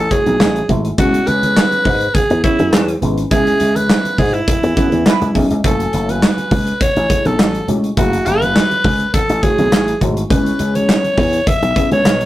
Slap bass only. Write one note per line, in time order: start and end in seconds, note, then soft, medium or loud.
0.26 0.36 B1 medium
0.40 0.61 A1 medium
0.69 0.90 G#1 medium
0.98 1.19 C#2 loud
1.27 1.59 C#2 loud
1.85 2.06 G#2 loud
2.30 2.40 E2 medium
2.59 2.69 F#2 loud
2.73 2.94 E2 medium
3.02 3.23 G#1 medium
3.31 3.52 C#2 loud
3.60 3.92 C#2 loud
4.18 4.39 G#2 loud
4.63 4.73 E2 medium
4.77 4.88 F#2 medium
4.92 5.02 E2 medium
5.21 5.31 C#2 medium
5.35 5.46 B1 loud
5.51 5.60 C#2 medium
5.64 5.85 F#1 loud
5.93 6.25 F#1 medium
6.51 6.72 C#2 loud
6.96 7.06 A1 medium
7.25 7.35 B1 medium
7.39 7.60 A1 medium
7.68 7.89 C#2 medium
7.97 8.18 F#1 loud
8.26 8.58 F#1 loud
8.84 9.05 C#2 loud
9.29 9.39 A1 medium
9.58 9.68 B1 medium
9.72 9.93 A1 loud
10.01 10.22 G#1 loud
10.30 10.51 C#2 loud
10.59 10.91 C#2 loud
11.18 11.38 E2 loud
11.62 11.72 B1 medium
11.91 12.01 C#2 loud
12.05 12.25 B1 medium